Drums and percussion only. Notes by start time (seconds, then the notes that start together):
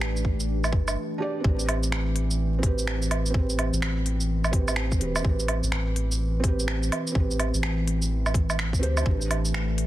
0.01 finger snap
0.17 shaker
0.25 kick
0.40 shaker
0.64 low woodblock, shaker
0.73 kick
0.88 low woodblock, shaker
1.44 kick
1.59 shaker
1.69 open hi-hat, low woodblock
1.83 shaker
1.92 finger snap
2.16 open hi-hat
2.31 shaker
2.63 kick, open hi-hat
2.78 shaker
2.87 finger snap
3.02 shaker
3.11 open hi-hat, low woodblock
3.26 shaker
3.34 kick
3.50 shaker
3.59 open hi-hat, low woodblock
3.74 shaker
3.82 finger snap
4.06 open hi-hat
4.21 shaker
4.44 low woodblock, shaker
4.53 kick, open hi-hat
4.68 low woodblock, shaker
4.76 finger snap
4.92 kick, shaker
5.01 open hi-hat
5.16 low woodblock, shaker
5.24 kick
5.40 shaker
5.48 open hi-hat, low woodblock
5.64 shaker
5.72 finger snap
5.96 open hi-hat
6.12 shaker
6.44 kick, open hi-hat
6.60 shaker
6.68 finger snap
6.83 shaker
6.92 open hi-hat, low woodblock
7.07 shaker
7.15 kick
7.31 shaker
7.40 open hi-hat, low woodblock
7.54 shaker
7.63 finger snap
7.88 open hi-hat
8.02 shaker
8.26 low woodblock, shaker
8.34 kick, open hi-hat
8.50 low woodblock, shaker
8.59 finger snap
8.73 kick, shaker
8.83 open hi-hat
8.97 low woodblock, shaker
9.06 kick
9.21 shaker
9.31 open hi-hat, low woodblock
9.45 shaker
9.54 finger snap
9.78 open hi-hat